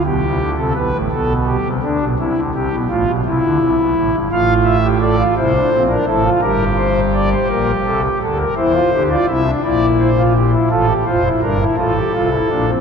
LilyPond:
<<
  \new Staff \with { instrumentName = "Pipe organ" } { \time 12/8 \key f \major \tempo 4. = 56 << { r1. | f''8 e''8 d''8 c''8. bes'16 a'8 bes'8 c''8 d''16 c''16 bes'8 a'16 g'16 a'16 bes'16 | c''8. d''16 e''8 d''8 c''8 g'8 a'8 c''8 bes'8 a'4. | } \\ { g'8. a'16 b'8 a'8 g'8 d'8 e'8 g'8 f'8 e'4. | f'8. g'16 a'16 f'16 e'16 d'16 c'16 d'16 e'16 f'16 g'2. | e'16 f'16 g'16 f'16 e'16 d'16 e'8. f'16 r16 e'16 f'16 g'16 f'16 e'16 d'16 e'16 f'16 g'16 f'16 e'16 d'16 c'16 | } >> }
  \new Staff \with { instrumentName = "Pipe organ" } { \clef bass \time 12/8 \key f \major <b,, b,>16 <c, c>16 <d, d>16 <c, c>16 <b,, b,>16 <a,, a,>16 <b,, b,>8. <c, c>16 <d, d>16 <b,, b,>16 <c, c>16 <d, d>16 <c, c>16 <b,, b,>16 <a,, a,>16 <b,, b,>16 <c, c>16 <d, d>16 <c, c>16 <b,, b,>16 <a,, a,>16 <g,, g,>16 | <a,, a,>4. <c, c>8 <bes,, bes,>8 <a,, a,>8 <g,, g,>4. <bes,, bes,>8 <c, c>8 <d, d>8 | <e, e>8 <d, d>8 <c, c>8 <bes,, bes,>4. <a,, a,>8 <f,, f,>8 <g,, g,>8 <a,, a,>8 <c, c>8 <bes,, bes,>8 | }
>>